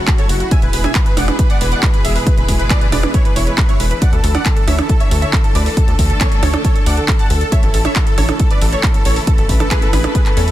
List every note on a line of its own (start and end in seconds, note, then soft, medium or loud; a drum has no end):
0.00 0.48 C#3 medium
0.00 0.48 F#3 medium
0.00 0.48 A3 medium
0.00 5.73 E4 medium
0.00 0.48 F#4 medium
0.07 0.16 F#4 medium
0.07 kick loud
0.07 clap loud
0.07 closed hi-hat medium
0.18 0.27 A4 medium
0.18 0.27 C#5 loud
0.18 0.27 C#5 medium
0.18 closed hi-hat soft
0.29 0.43 F#1 medium
0.29 0.38 F#4 medium
0.29 open hi-hat loud
0.40 0.49 F#4 medium
0.40 closed hi-hat soft
0.51 3.98 B2 medium
0.51 7.48 E3 medium
0.51 3.98 G#3 medium
0.51 3.98 G#4 medium
0.51 0.60 E5 medium
0.51 0.59 G#5 loud
0.51 0.60 G#5 loud
0.51 kick loud
0.51 closed hi-hat medium
0.62 0.69 E1 loud
0.62 0.70 B4 medium
0.62 0.71 B4 medium
0.62 closed hi-hat soft
0.73 0.87 E1 loud
0.73 0.81 B4 medium
0.73 0.82 B4 medium
0.73 open hi-hat loud
0.84 0.92 E5 medium
0.84 0.92 G#5 medium
0.84 closed hi-hat soft
0.84 percussion blips medium
0.95 1.03 B4 medium
0.95 kick loud
0.95 clap loud
0.95 closed hi-hat medium
1.06 1.14 B4 medium
1.06 closed hi-hat soft
1.17 1.31 E1 loud
1.17 1.25 D5 medium
1.17 1.25 F#5 medium
1.17 1.25 F#5 loud
1.17 open hi-hat loud
1.17 percussion blips medium
1.28 1.36 B4 medium
1.28 closed hi-hat soft
1.28 percussion blips medium
1.39 1.47 B4 medium
1.39 kick loud
1.39 closed hi-hat medium
1.50 1.58 D5 medium
1.50 1.58 F#5 medium
1.50 closed hi-hat soft
1.61 1.75 E1 loud
1.61 1.69 B4 medium
1.61 open hi-hat loud
1.72 1.80 D5 medium
1.72 1.80 F#5 medium
1.72 closed hi-hat soft
1.83 1.91 B4 medium
1.83 kick loud
1.83 clap loud
1.83 closed hi-hat medium
1.94 2.02 B4 medium
1.94 closed hi-hat soft
2.05 2.18 E1 medium
2.05 2.13 G#4 medium
2.05 2.13 E5 loud
2.05 open hi-hat loud
2.15 2.24 B4 medium
2.15 open hi-hat medium
2.26 2.35 B4 medium
2.26 kick loud
2.26 closed hi-hat medium
2.37 2.44 E1 loud
2.37 2.46 B4 medium
2.37 closed hi-hat soft
2.48 2.62 E1 loud
2.48 kick medium
2.48 open hi-hat loud
2.59 2.67 B4 medium
2.59 2.68 B4 medium
2.59 closed hi-hat soft
2.70 2.78 B4 medium
2.70 2.78 D5 medium
2.70 kick loud
2.70 clap loud
2.70 closed hi-hat medium
2.81 2.89 B4 medium
2.81 2.90 B4 medium
2.81 closed hi-hat soft
2.92 3.06 E1 loud
2.92 3.00 B4 medium
2.92 3.00 D5 medium
2.92 open hi-hat loud
2.92 percussion blips medium
3.03 3.11 B4 medium
3.03 closed hi-hat soft
3.03 percussion blips medium
3.14 3.22 E4 medium
3.14 3.22 C#5 medium
3.14 kick loud
3.14 closed hi-hat medium
3.25 3.33 B4 medium
3.25 closed hi-hat soft
3.36 3.50 E1 loud
3.36 3.44 E4 medium
3.36 3.44 C#5 loud
3.36 open hi-hat loud
3.47 3.55 B4 medium
3.47 closed hi-hat soft
3.58 3.66 B4 medium
3.58 kick loud
3.58 clap loud
3.58 closed hi-hat medium
3.69 3.77 E4 medium
3.69 3.77 C#5 medium
3.69 closed hi-hat soft
3.80 3.94 E1 medium
3.80 3.88 B4 medium
3.80 open hi-hat loud
3.91 3.99 B4 medium
3.91 closed hi-hat soft
4.02 7.49 D3 medium
4.02 7.49 A3 medium
4.02 9.23 A4 medium
4.02 4.10 D5 medium
4.02 4.10 F#5 loud
4.02 kick loud
4.02 closed hi-hat medium
4.13 4.20 D2 loud
4.13 4.21 A4 medium
4.13 closed hi-hat soft
4.24 4.37 D2 loud
4.24 4.32 A4 medium
4.24 open hi-hat loud
4.35 4.43 D5 medium
4.35 4.43 F#5 medium
4.35 closed hi-hat soft
4.35 percussion blips medium
4.45 4.54 A4 medium
4.45 kick loud
4.45 clap loud
4.45 closed hi-hat medium
4.56 4.65 A4 medium
4.56 closed hi-hat soft
4.67 4.81 D2 loud
4.67 4.76 C#5 medium
4.67 4.76 E5 medium
4.67 4.76 E5 loud
4.67 open hi-hat loud
4.67 percussion blips medium
4.78 4.87 A4 medium
4.78 closed hi-hat soft
4.78 percussion blips medium
4.89 4.97 A4 medium
4.89 kick loud
4.89 closed hi-hat medium
5.00 5.08 C#5 medium
5.00 5.08 E5 medium
5.00 closed hi-hat soft
5.11 5.25 D2 loud
5.11 5.19 A4 medium
5.11 open hi-hat loud
5.22 5.30 C#5 medium
5.22 5.30 E5 medium
5.22 5.30 E5 loud
5.22 closed hi-hat soft
5.33 5.41 A4 medium
5.33 kick loud
5.33 clap loud
5.33 closed hi-hat medium
5.44 5.52 A4 medium
5.44 closed hi-hat soft
5.55 5.69 D2 medium
5.55 5.63 B4 medium
5.55 5.63 D5 medium
5.55 open hi-hat loud
5.66 5.74 A4 medium
5.66 open hi-hat medium
5.77 7.50 D4 medium
5.77 5.85 A4 medium
5.77 kick loud
5.77 closed hi-hat medium
5.88 5.95 D2 loud
5.88 5.96 A4 medium
5.88 closed hi-hat soft
5.99 6.13 D2 loud
5.99 kick medium
5.99 open hi-hat loud
6.10 6.18 A4 medium
6.10 closed hi-hat soft
6.21 6.29 A4 medium
6.21 6.29 C#5 medium
6.21 kick loud
6.21 clap loud
6.21 closed hi-hat medium
6.32 6.40 A4 medium
6.32 closed hi-hat soft
6.42 6.56 D2 loud
6.42 6.51 A4 medium
6.42 6.51 C#5 medium
6.42 open hi-hat loud
6.42 percussion blips medium
6.53 6.62 A4 medium
6.53 closed hi-hat soft
6.53 percussion blips medium
6.65 6.73 A4 medium
6.65 6.73 C#5 medium
6.65 kick loud
6.65 closed hi-hat medium
6.75 6.84 A4 medium
6.75 closed hi-hat soft
6.86 7.00 D2 loud
6.86 6.94 D5 medium
6.86 6.94 F#5 loud
6.86 6.95 F#5 loud
6.86 open hi-hat loud
6.97 7.05 A4 medium
6.97 7.06 A4 medium
6.97 closed hi-hat soft
7.08 7.16 A4 medium
7.08 kick loud
7.08 clap loud
7.08 closed hi-hat medium
7.19 7.27 F#5 medium
7.19 7.27 A5 loud
7.19 7.27 A5 medium
7.19 closed hi-hat soft
7.30 7.44 D2 medium
7.30 7.38 A4 medium
7.30 open hi-hat loud
7.41 7.49 A4 medium
7.41 closed hi-hat soft
7.52 10.51 C#3 medium
7.52 10.51 E3 medium
7.52 10.51 A3 medium
7.52 10.51 E4 medium
7.52 7.60 C#5 medium
7.52 7.60 E5 loud
7.52 kick loud
7.52 closed hi-hat medium
7.63 7.70 A1 loud
7.63 7.71 A4 medium
7.63 closed hi-hat soft
7.74 7.88 A1 loud
7.74 7.82 A4 medium
7.74 open hi-hat loud
7.85 7.93 C#5 medium
7.85 7.93 E5 medium
7.85 closed hi-hat soft
7.85 percussion blips medium
7.96 8.04 A4 medium
7.96 kick loud
7.96 clap loud
7.96 closed hi-hat medium
8.07 8.15 A4 medium
8.07 closed hi-hat soft
8.18 8.32 A1 loud
8.18 8.26 A4 medium
8.18 8.26 C#5 loud
8.18 8.26 C#5 medium
8.18 open hi-hat loud
8.18 percussion blips medium
8.28 8.37 A4 medium
8.28 closed hi-hat soft
8.28 percussion blips medium
8.40 8.48 A4 medium
8.40 kick loud
8.40 closed hi-hat loud
8.51 8.59 B4 medium
8.51 8.59 D5 medium
8.51 closed hi-hat soft
8.61 8.75 A1 loud
8.61 8.70 A4 medium
8.61 open hi-hat loud
8.72 8.81 A4 medium
8.72 8.81 C#5 loud
8.72 8.81 C#5 medium
8.72 closed hi-hat soft
8.83 8.92 A4 medium
8.83 kick loud
8.83 clap loud
8.83 closed hi-hat medium
8.94 9.03 A4 medium
8.94 closed hi-hat soft
9.05 9.19 A1 medium
9.05 9.14 A4 medium
9.05 9.14 C#5 loud
9.05 open hi-hat loud
9.16 9.25 A4 medium
9.16 open hi-hat medium
9.27 9.35 A4 medium
9.27 9.36 A4 medium
9.27 10.51 B4 medium
9.27 kick loud
9.27 closed hi-hat loud
9.38 9.45 A1 loud
9.38 9.46 A4 medium
9.38 9.47 A4 medium
9.38 closed hi-hat soft
9.49 9.63 A1 loud
9.49 kick medium
9.49 open hi-hat loud
9.60 9.68 A4 medium
9.60 closed hi-hat soft
9.60 percussion blips medium
9.71 9.79 G#4 medium
9.71 9.79 B4 medium
9.71 kick loud
9.71 clap loud
9.71 closed hi-hat loud
9.82 9.90 A4 medium
9.82 closed hi-hat soft
9.93 10.07 A1 loud
9.93 10.01 G#4 medium
9.93 10.01 B4 medium
9.93 open hi-hat loud
9.93 percussion blips medium
10.04 10.12 A4 medium
10.04 closed hi-hat soft
10.04 percussion blips medium
10.15 10.23 G#4 medium
10.15 10.23 B4 medium
10.15 kick loud
10.15 closed hi-hat loud
10.26 10.34 A4 medium
10.26 clap soft
10.26 closed hi-hat soft
10.37 10.51 E2 medium
10.37 10.45 C#4 medium
10.37 10.45 A4 medium
10.37 10.45 A4 loud
10.37 open hi-hat loud
10.48 10.51 A4 medium
10.48 closed hi-hat soft